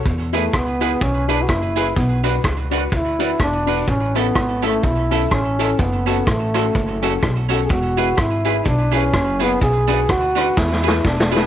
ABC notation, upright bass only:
X:1
M:4/4
L:1/8
Q:"Swing" 1/4=126
K:Emix
V:1 name="Upright bass" clef=bass
E,,2 C,,2 B,,,2 F,,,2 | B,,,2 C,,2 D,,2 E,,,2 | A,,,2 G,,,2 B,,,2 A,,,2 | F,,,2 A,,,2 F,,,2 B,,,2 |
E,,,2 G,,,2 B,,,2 F,,,2 | B,,,2 D,,2 E,,2 E,,,2 |]